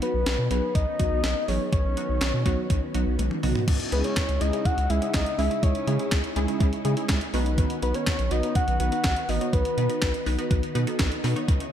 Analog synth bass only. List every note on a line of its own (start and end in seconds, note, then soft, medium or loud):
0.14 0.25 B1 loud
0.26 0.37 B1 loud
0.38 0.49 B2 loud
0.51 0.61 B1 loud
0.75 0.85 B1 loud
1.00 1.10 B1 medium
1.12 1.22 B1 medium
1.24 1.34 B1 loud
1.48 1.59 A1 medium
1.73 1.83 B1 loud
1.85 1.95 B1 loud
2.09 2.20 B1 loud
2.21 2.32 B1 loud
2.34 2.44 B2 loud
2.46 2.56 B1 loud
2.70 2.81 B1 loud
2.95 3.05 B1 loud
3.07 3.17 B1 loud
3.19 3.29 B1 loud
3.43 3.54 B1 loud
3.68 3.78 C#2 loud
3.92 4.03 C#2 loud
4.29 4.39 C#2 medium
4.41 4.51 C#2 loud
4.78 4.88 C#2 loud
4.90 5.00 C#2 loud
5.14 5.25 B1 loud
5.38 5.49 C#2 loud
5.63 5.73 C#2 loud
5.87 5.98 C#3 loud
6.12 6.22 C#2 loud
6.36 6.47 C#2 loud
6.60 6.71 C#2 loud
6.85 6.95 C#3 loud
7.09 7.20 C#2 loud
7.34 7.65 B1 loud
7.82 7.93 B1 loud
8.19 8.29 B1 loud
8.31 8.42 B1 loud
8.68 8.78 B1 loud
8.80 8.90 B1 loud
9.05 9.15 B1 loud
9.29 9.39 A1 medium
9.53 9.64 B1 loud
9.78 9.88 B2 loud
10.02 10.12 B1 medium
10.26 10.37 B1 loud
10.51 10.61 B1 loud
10.75 10.86 B2 loud
11.00 11.10 B1 loud
11.24 11.34 B2 loud
11.48 11.59 C#2 loud